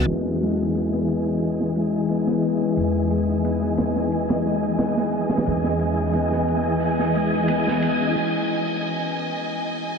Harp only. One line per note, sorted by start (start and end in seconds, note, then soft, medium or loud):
0.00 0.12 G#3 medium
0.00 0.74 B3 loud
0.00 1.25 C#4 medium
0.00 0.59 D#4 medium
0.41 1.75 G#3 medium
0.59 1.93 D#4 medium
0.74 0.92 B3 medium
0.92 2.09 B3 medium
1.26 2.61 C#4 medium
1.76 3.09 G#3 medium
1.94 3.28 D#4 medium
2.09 2.27 B3 medium
2.27 3.44 B3 medium
2.61 3.95 C#4 medium
3.11 4.44 G#3 medium
3.28 4.63 D#4 medium
3.44 3.62 B3 medium
3.62 4.79 B3 medium
3.96 5.30 C#4 medium
4.45 5.79 G#3 medium
4.63 5.97 D#4 medium
4.79 4.96 B3 medium
4.97 6.14 B3 medium
5.30 6.65 C#4 medium
5.80 7.14 G#3 medium
5.98 7.33 D#4 medium
6.14 6.31 B3 medium
6.32 7.48 B3 medium
6.65 8.00 C#4 medium
7.15 9.98 G#3 medium
7.33 9.98 D#4 medium
7.49 7.66 B3 medium
7.66 9.98 B3 medium
8.00 9.98 C#4 medium